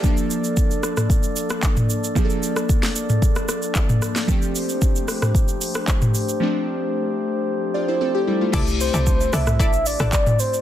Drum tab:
CC |----------------|----------------|----------------|----------------|
HH |----------------|----------------|--o---o---o---o-|----------------|
SH |xxxxxxxxxxxxxxxx|xxxxxxxxxxxxxxxx|xxxxxxxxxxxxxxxx|----------------|
CP |------------x---|------------x---|------------x---|----------------|
SD |------rr---r----|---r-o---rr---ro|------rr---r----|----------------|
T2 |-------o-----o--|-------o-----o--|-------o-----o--|----------------|
BD |o---o---o---o---|o---o---o---o---|o---o---o---o---|----------------|

CC |x---------------|
HH |--o---o---o---o-|
SH |xxxxxxxxxxxxxxxx|
CP |------------x---|
SD |------rr---r----|
T2 |-------o-----o--|
BD |o---o---o---o---|